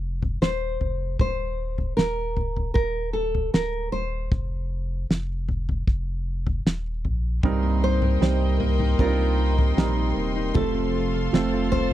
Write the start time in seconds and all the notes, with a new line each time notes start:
Already playing: F1
0.22 floor tom
0.41 D#1 C5, snare
0.80 F1, floor tom
1.19 D#1 C5, kick, floor tom
1.78 floor tom
1.97 D#1 A#4, snare
2.37 floor tom
2.56 floor tom
2.74 D#1 A#4, kick
3.13 A4
3.35 floor tom
3.54 D1 A#4, snare
3.92 D#1 C5
4.32 F1, kick, floor tom
5.09 F1, snare
5.49 floor tom
5.69 floor tom
5.87 F1, kick
6.47 floor tom
6.66 D#1, snare
7.04 A#1, floor tom
7.43 C2 G2 C3 G3 C4 D#4 A#4 D#5 G5 C6, kick, floor tom
7.63 A#3
7.82 D#4 C5
8.02 A#4, floor tom
8.21 C2 G3 A#3 C4 D#4 C5, snare
8.41 D#4
8.60 A#3, floor tom
8.79 D#4, floor tom
8.99 C2 C3 G3 C4 D4 F4 A#4, kick
9.06 D#4
9.19 A#3
9.38 D#4
9.58 A#4, floor tom
9.77 A#1 G3 A#3 C4 D#4 A#4, snare
9.97 D#4
10.16 D#1 A#3
10.35 D#4
10.54 F1 C3 F3 A3 C4 A4 C5 F5, kick, floor tom
10.74 C4
10.94 F4
11.14 A4
11.32 F1 F3 A3 C4 A4, snare
11.53 F4
11.72 C4 C5, floor tom